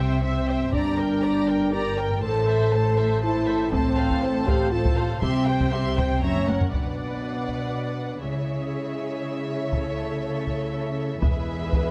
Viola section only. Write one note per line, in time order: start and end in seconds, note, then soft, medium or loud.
0.00 0.23 C5 soft
0.23 0.46 E5 soft
0.48 0.73 C5 soft
0.73 0.96 G4 soft
0.97 1.23 A#4 soft
1.23 1.48 G4 soft
1.48 1.73 A#4 soft
1.73 1.96 G4 soft
1.98 2.23 A#4 soft
2.22 2.46 A4 soft
2.47 2.73 C5 medium
2.73 2.98 A4 medium
2.97 3.22 C5 soft
3.22 3.46 A4 medium
3.47 3.73 C5 soft
3.72 3.96 A4 medium
3.98 4.23 C5 soft
4.22 4.48 A4 medium
4.48 4.73 C5 medium
4.72 4.96 A4 medium
4.97 5.22 C5 soft
5.23 5.46 G4 soft
5.48 5.73 C5 soft
5.73 5.98 G4 soft
5.98 6.23 C5 soft
6.24 6.47 C#5 soft
6.48 6.73 A#4 soft
6.73 8.19 B4 soft
8.22 9.69 G#4 soft
9.72 11.19 A4 soft
11.23 11.91 G#4 soft